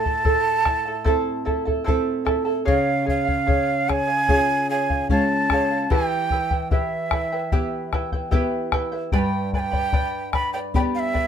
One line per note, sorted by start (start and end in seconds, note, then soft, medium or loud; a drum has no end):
0.00 2.64 A2 medium
0.00 1.43 A5 loud
0.04 0.23 E4 soft
0.04 0.24 A4 soft
0.04 0.24 A5 soft
0.04 bombo low medium
0.24 0.65 E4 medium
0.24 0.65 A4 medium
0.24 0.66 C5 medium
0.24 0.64 E5 medium
0.24 0.66 A5 medium
0.24 bombo low medium
0.65 0.87 E4 medium
0.65 0.86 A4 medium
0.65 0.86 E5 medium
0.65 0.84 A5 medium
0.65 bombo rim medium
0.65 bombo low medium
0.85 1.05 E4 soft
0.85 1.04 A4 medium
0.85 1.04 A5 medium
1.04 1.85 C4 soft
1.04 1.44 E4 medium
1.04 1.85 E4 soft
1.04 1.45 A4 medium
1.04 1.85 A4 medium
1.04 1.46 C5 medium
1.04 1.44 E5 medium
1.04 1.45 A5 medium
1.04 bombo low medium
1.45 1.66 E4 medium
1.45 1.65 A4 medium
1.45 1.66 E5 medium
1.45 1.64 A5 medium
1.45 bombo low medium
1.65 1.84 E4 soft
1.65 1.84 A4 soft
1.65 1.85 A5 medium
1.65 bombo low soft
1.84 2.66 C4 soft
1.84 2.24 E4 medium
1.84 2.66 E4 soft
1.84 2.25 A4 medium
1.84 2.26 C5 medium
1.84 2.24 E5 medium
1.84 2.25 A5 medium
1.84 bombo low medium
1.88 2.66 A4 medium
2.25 2.45 E4 medium
2.25 2.44 A4 medium
2.25 2.47 E5 medium
2.25 2.44 A5 medium
2.25 bombo rim soft
2.25 bombo low soft
2.45 2.65 E4 soft
2.45 2.65 A4 medium
2.45 2.67 A5 soft
2.65 5.86 C#3 medium
2.65 3.04 G#4 medium
2.65 3.05 C#5 medium
2.65 3.05 F5 medium
2.65 3.06 F5 medium
2.65 bombo low medium
3.05 3.27 G#4 medium
3.05 3.26 C#5 medium
3.05 3.24 F5 medium
3.05 3.91 F5 medium
3.05 bombo low soft
3.25 3.46 C#5 soft
3.25 3.46 F5 soft
3.25 bombo low medium
3.46 3.87 G#4 medium
3.46 3.87 C#5 medium
3.46 3.88 F5 medium
3.46 bombo low medium
3.88 4.09 G#4 medium
3.88 4.07 C#5 medium
3.88 4.06 F5 medium
3.88 4.70 G#5 loud
3.88 bombo rim medium
3.88 bombo low soft
4.08 4.27 C#5 soft
4.08 4.28 F5 medium
4.28 5.08 C#4 soft
4.28 5.08 F4 soft
4.28 4.68 G#4 medium
4.28 5.08 G#4 medium
4.28 4.69 C#5 medium
4.28 4.69 F5 medium
4.28 bombo low medium
4.69 4.90 G#4 medium
4.69 4.90 C#5 medium
4.69 4.88 F5 medium
4.69 5.08 G#5 medium
4.89 5.09 C#5 soft
4.89 5.10 F5 soft
4.89 bombo low medium
5.09 5.88 G#3 medium
5.09 5.88 C#4 soft
5.09 5.88 F4 soft
5.09 5.50 C#5 medium
5.09 5.51 F5 medium
5.09 5.93 A5 loud
5.09 bombo low medium
5.50 5.71 G#4 medium
5.50 5.70 C#5 medium
5.50 5.69 F5 medium
5.50 bombo rim medium
5.50 bombo low medium
5.71 5.90 C#5 soft
5.71 5.91 F5 medium
5.90 9.09 E3 medium
5.90 6.31 E4 medium
5.90 6.31 G4 medium
5.90 6.31 B4 medium
5.90 6.31 E5 medium
5.90 6.31 G5 medium
5.90 6.71 G5 loud
5.90 bombo low medium
6.30 6.51 E4 medium
6.30 6.50 B4 medium
6.30 6.51 E5 medium
6.30 6.50 G5 medium
6.30 bombo low medium
6.51 6.70 E4 soft
6.51 6.71 B4 soft
6.51 6.71 G5 soft
6.51 bombo low medium
6.71 7.11 E4 medium
6.71 7.12 G4 medium
6.71 7.12 B4 medium
6.71 7.10 E5 medium
6.71 7.88 E5 medium
6.71 7.12 G5 medium
6.71 bombo low medium
7.11 7.32 E4 medium
7.11 7.32 B4 medium
7.11 7.31 E5 medium
7.11 7.31 G5 medium
7.11 bombo rim medium
7.11 bombo low medium
7.32 7.51 E4 soft
7.32 7.51 B4 soft
7.32 7.51 G5 medium
7.52 8.30 B3 soft
7.52 7.92 E4 medium
7.52 8.30 E4 soft
7.52 7.92 G4 medium
7.52 8.31 G4 soft
7.52 7.92 B4 medium
7.52 7.91 E5 medium
7.52 7.92 G5 medium
7.52 bombo low medium
7.93 8.13 E4 medium
7.93 8.13 B4 medium
7.93 8.12 E5 medium
7.93 8.11 G5 medium
7.93 bombo rim medium
7.93 bombo low medium
8.12 8.30 E4 soft
8.12 8.31 B4 medium
8.12 8.31 G5 medium
8.12 bombo low medium
8.31 9.10 B3 soft
8.31 8.72 E4 loud
8.31 9.11 E4 soft
8.31 8.72 G4 medium
8.31 9.11 G4 medium
8.31 8.72 B4 medium
8.31 8.71 E5 medium
8.31 8.73 G5 loud
8.31 bombo low medium
8.72 8.92 E4 medium
8.72 8.91 B4 medium
8.72 8.93 E5 medium
8.72 8.91 G5 medium
8.72 bombo rim medium
8.72 bombo low medium
8.92 9.13 E4 soft
8.92 9.12 B4 soft
8.92 9.11 G5 medium
9.12 11.27 G2 medium
9.12 9.53 G4 medium
9.12 9.53 B4 medium
9.12 9.53 D5 medium
9.12 9.53 G5 medium
9.12 9.20 G#5 medium
9.12 9.53 B5 loud
9.12 bombo low medium
9.19 9.51 G5 medium
9.53 9.73 B4 medium
9.53 9.72 D5 medium
9.53 9.74 G5 medium
9.53 9.60 G#5 medium
9.53 9.71 B5 medium
9.53 bombo low medium
9.59 10.30 G5 loud
9.72 9.92 B4 soft
9.72 9.93 D5 soft
9.72 9.92 B5 medium
9.72 bombo low medium
9.93 10.34 G4 medium
9.93 10.32 B4 medium
9.93 10.32 D5 medium
9.93 10.32 G5 medium
9.93 10.33 B5 medium
9.93 bombo low medium
10.33 10.54 B4 medium
10.33 10.54 D5 medium
10.33 10.54 G5 medium
10.33 10.52 B5 loud
10.33 10.53 B5 medium
10.33 bombo rim medium
10.33 bombo low medium
10.53 10.74 B4 soft
10.53 10.75 D5 soft
10.53 10.59 G5 medium
10.53 10.74 B5 medium
10.74 11.27 B3 soft
10.74 11.27 D4 soft
10.74 11.27 G4 medium
10.74 11.15 G4 medium
10.74 11.13 B4 medium
10.74 11.13 D5 medium
10.74 11.12 G5 medium
10.74 10.82 G5 medium
10.74 11.15 B5 medium
10.74 bombo low medium
10.95 11.00 F5 medium
10.99 11.27 E5 medium
11.14 11.27 B4 medium
11.14 11.27 D5 medium
11.14 11.27 G5 medium
11.14 11.27 B5 medium
11.14 bombo low medium